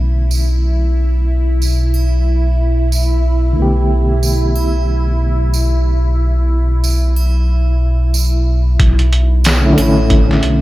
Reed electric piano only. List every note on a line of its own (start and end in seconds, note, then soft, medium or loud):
0.00 3.52 D3 medium
0.00 3.54 A3 medium
0.00 3.56 C#4 medium
0.00 3.57 E4 medium
3.53 8.74 D3 medium
3.53 8.76 A3 medium
3.59 8.77 B3 medium
3.59 8.79 G4 medium
9.61 9.71 D3 medium
9.61 9.74 A3 medium
9.61 9.74 C#4 medium
9.66 9.75 E4 medium
9.72 10.61 D3 medium
9.72 10.61 A3 medium
9.79 10.61 C#4 medium
9.79 10.61 E4 loud